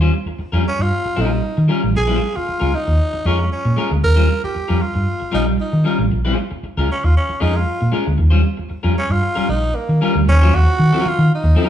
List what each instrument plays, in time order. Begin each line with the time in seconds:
0.01 clean electric guitar G3 C#4 F4 C5
0.13 muted clean electric guitar stroke
0.26 muted fingered electric bass stroke, muted clean electric guitar stroke
0.39 muted clean electric guitar stroke, muted fingered electric bass stroke
0.52 fingered electric bass F2, clean electric guitar G3 C#4 F4 A#4
0.65 tenor saxophone C#4, muted clean electric guitar stroke
0.78 fingered electric bass G2, tenor saxophone F4, muted clean electric guitar stroke
1.05 muted fingered electric bass stroke, muted clean electric guitar stroke
1.16 fingered electric bass A#1, clean electric guitar G3 C#4 F4 A#4
1.20 tenor saxophone D#4
1.31 muted clean electric guitar stroke
1.57 fingered electric bass D#3, muted clean electric guitar stroke
1.68 clean electric guitar G3 C#4 F4 A#4
1.83 fingered electric bass A1, muted clean electric guitar stroke
1.95 fingered electric bass A#1, tenor saxophone G#4, muted clean electric guitar stroke
2.07 clean electric guitar G#3 C#4 F4 C5
2.20 muted clean electric guitar stroke
2.33 tenor saxophone F4, muted clean electric guitar stroke, muted fingered electric bass stroke
2.46 muted clean electric guitar stroke, muted fingered electric bass stroke
2.60 fingered electric bass C#2, clean electric guitar G#3 C#4 F4 A#4
2.73 tenor saxophone D#4, muted clean electric guitar stroke
2.87 fingered electric bass D#2, muted clean electric guitar stroke
3.13 muted clean electric guitar stroke, muted fingered electric bass stroke
3.25 fingered electric bass F2, clean electric guitar G#3 C#4 F4 A#4, tenor saxophone C#4
3.39 muted clean electric guitar stroke
3.52 tenor saxophone C#4
3.65 fingered electric bass A#2, muted clean electric guitar stroke
3.77 clean electric guitar G#3 C#4 F4 A#4
3.91 fingered electric bass D2, muted clean electric guitar stroke
4.04 fingered electric bass D#2, tenor saxophone A#4, muted clean electric guitar stroke
4.16 clean electric guitar G3 C#4 F4 C5
4.29 muted clean electric guitar stroke
4.43 tenor saxophone G4, muted clean electric guitar stroke, muted fingered electric bass stroke
4.55 muted clean electric guitar stroke, muted fingered electric bass stroke
4.68 fingered electric bass F2, clean electric guitar G3 C#4 F4 A#4
4.81 tenor saxophone F4, muted clean electric guitar stroke
4.94 fingered electric bass G2, muted clean electric guitar stroke
5.20 muted clean electric guitar stroke, muted fingered electric bass stroke
5.32 fingered electric bass A#1, clean electric guitar G3 C#4 F4 A#4, tenor saxophone D#4
5.46 muted clean electric guitar stroke
5.60 tenor saxophone D#4
5.72 fingered electric bass D#3, muted clean electric guitar stroke
5.84 clean electric guitar G3 C#4 F4 A#4
5.99 fingered electric bass A1, muted clean electric guitar stroke
6.11 fingered electric bass A#1, muted clean electric guitar stroke
6.25 clean electric guitar G#3 C#4 F4 C5
6.37 muted clean electric guitar stroke
6.51 muted clean electric guitar stroke, muted fingered electric bass stroke
6.63 muted fingered electric bass stroke, muted clean electric guitar stroke
6.77 fingered electric bass C#2, clean electric guitar G#3 C#4 F4 A#4
6.89 tenor saxophone C#4, muted clean electric guitar stroke
7.03 fingered electric bass D#2, tenor saxophone F4, muted clean electric guitar stroke
7.17 tenor saxophone C#4
7.29 muted clean electric guitar stroke, muted fingered electric bass stroke
7.40 fingered electric bass F2, clean electric guitar G#3 C#4 F4 A#4, tenor saxophone D#4
7.54 tenor saxophone F4, muted clean electric guitar stroke
7.80 fingered electric bass A#2, muted clean electric guitar stroke
7.92 clean electric guitar G#3 C#4 F4 A#4
8.06 fingered electric bass D2, muted clean electric guitar stroke
8.18 fingered electric bass D#2, muted clean electric guitar stroke
8.30 clean electric guitar G3 C#4 F4 C5
8.43 muted clean electric guitar stroke
8.57 muted clean electric guitar stroke, muted fingered electric bass stroke
8.69 muted clean electric guitar stroke, muted fingered electric bass stroke
8.83 fingered electric bass F2, clean electric guitar G3 C#4 F4 A#4
8.95 tenor saxophone C#4, muted clean electric guitar stroke
9.09 fingered electric bass G2, tenor saxophone F4, muted clean electric guitar stroke
9.21 muted clean electric guitar stroke
9.35 clean electric guitar G3 C#4 F4 A#4, muted fingered electric bass stroke
9.48 fingered electric bass A#1, tenor saxophone D#4, muted clean electric guitar stroke
9.63 muted clean electric guitar stroke
9.75 tenor saxophone A#3
9.89 fingered electric bass D#3, muted clean electric guitar stroke
10.01 clean electric guitar G3 C#4 F4 A#4
10.15 fingered electric bass D2, muted clean electric guitar stroke
10.27 fingered electric bass D#2, tenor saxophone C#4, muted clean electric guitar stroke
10.42 clean electric guitar F#3 C#4 F4 C5
10.54 fingered electric bass D#2, tenor saxophone F#4, muted clean electric guitar stroke
10.66 muted clean electric guitar stroke
10.79 fingered electric bass D#3, muted clean electric guitar stroke
10.93 clean electric guitar F#3 C#4 F4 A#4
11.06 tenor saxophone F4, muted clean electric guitar stroke, muted fingered electric bass stroke
11.19 fingered electric bass D#3, muted clean electric guitar stroke
11.35 tenor saxophone D#4
11.43 fingered electric bass D#2, muted clean electric guitar stroke
11.55 clean electric guitar F#3 C#4 F4 A#4